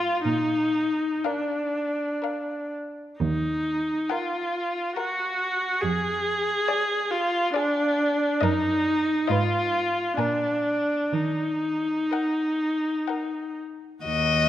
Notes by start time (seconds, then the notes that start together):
Already playing: F4
0.24 A#2 D#4
1.24 D4 A#4 F5
2.22 A#4 F5
3.20 D#2 D#4
4.10 F4 A#4 F#5
4.96 F#4 A#4 F#5
5.81 F2 G#4
6.68 G#4 D5
7.11 F4
7.54 D4 G#4 D5
8.41 F#2 D#4 A#4 D#5
9.27 G#2 F4 D#5
9.31 B4
10.17 A#2 D4 A#4 G#5
11.12 D#3 D#4
12.11 A#4 F#5
13.08 A#4 F#5
14.04 D#2 F#4 D#5